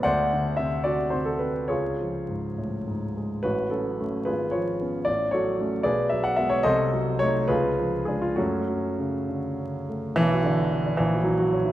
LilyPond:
<<
  \new Staff \with { instrumentName = "Grand piano" } { \time 6/8 \key fis \minor \tempo 4. = 72 <c'' d'' fis''>4 e''8 <fis' d''>8 c''16 a'16 b'8 | <eis' gis' cis''>4. r4. | <fis' b'>8 <cis' fis' a'>4 <eis' gis' b'>8 <eis' gis' cis''>4 | d''8 <fis' a' cis''>4 <gis' b' d''>8 e''16 fis''16 e''16 cis''16 |
<a' c'' ees''>4 cis''8 <eis' gis' b'>4 gis'16 eis'16 | <a cis' fis'>2~ <a cis' fis'>8 r8 | \key b \minor e8 d4 e8 fis4 | }
  \new Staff \with { instrumentName = "Grand piano" } { \clef bass \time 6/8 \key fis \minor d,8 d8 c8 d8 c8 c'8 | cis,8 eis8 gis,8 a,8 gis,8 gis8 | a,,8 fis8 <a cis'>8 gis,,8 eis8 <b cis'>8 | a,,8 fis8 <a cis'>8 b,,8 fis8 <gis b>8 |
c,8 ges8 <a ees'>8 cis,8 eis8 <gis d'>8 | fis,8 fis8 cis8 d8 cis8 a8 | \key b \minor b,,16 fis'16 d'16 fis'16 b'16 d'16 ais,,16 fis'16 e'16 fis'16 cis''16 e'16 | }
>>